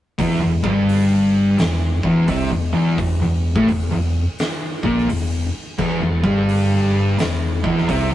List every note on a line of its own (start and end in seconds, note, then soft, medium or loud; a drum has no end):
0.19 0.39 E1 medium
0.19 0.40 E2 loud
0.19 0.41 E3 loud
0.19 kick loud
0.19 open hi-hat medium
0.40 0.61 E1 medium
0.40 0.62 E2 medium
0.63 1.55 G1 medium
0.63 1.58 G2 medium
0.63 1.58 G3 medium
0.63 kick loud
0.89 open hi-hat medium
1.58 2.00 E1 medium
1.58 1.95 E2 medium
1.58 snare loud
1.58 open hi-hat medium
2.03 2.27 E1 medium
2.03 2.28 E2 medium
2.03 2.28 E3 loud
2.03 kick loud
2.28 2.49 C2 medium
2.28 2.50 C3 loud
2.28 2.50 C4 medium
2.28 kick loud
2.28 open hi-hat medium
2.50 2.71 E1 medium
2.50 2.72 E2 medium
2.73 2.96 E1 medium
2.73 2.98 E2 loud
2.73 2.98 E3 loud
2.98 3.19 E1 medium
2.98 3.21 E2 medium
2.98 kick medium
2.98 open hi-hat medium
3.20 3.53 E1 medium
3.20 3.51 E2 medium
3.55 3.67 A1 medium
3.55 3.68 A2 medium
3.55 3.68 A3 loud
3.55 kick loud
3.68 3.89 E1 medium
3.68 3.90 E2 medium
3.68 open hi-hat medium
3.89 4.23 E1 medium
3.89 4.21 E2 medium
4.39 snare loud
4.39 open hi-hat medium
4.83 5.07 A#1 loud
4.83 5.08 A#2 medium
4.83 5.08 A#3 loud
4.83 kick medium
4.98 snare soft
5.07 5.50 E1 medium
5.07 5.44 E2 medium
5.07 open hi-hat medium
5.79 6.00 E1 medium
5.79 6.00 E2 loud
5.79 6.00 E3 loud
5.79 kick loud
5.79 crash medium
6.00 6.22 E1 medium
6.00 6.23 E2 medium
6.23 7.14 G1 loud
6.23 7.18 G2 medium
6.23 7.18 G3 loud
6.23 kick loud
6.49 open hi-hat medium
7.18 7.60 E1 medium
7.18 7.55 E2 medium
7.18 snare loud
7.18 open hi-hat medium
7.64 7.87 E1 loud
7.64 7.88 E2 medium
7.64 7.88 E3 medium
7.64 kick loud
7.78 snare soft
7.89 8.10 C2 medium
7.89 8.10 C3 medium
7.89 8.10 C4 loud
7.89 kick loud
7.89 open hi-hat medium
8.10 8.14 E1 medium
8.10 8.14 E2 medium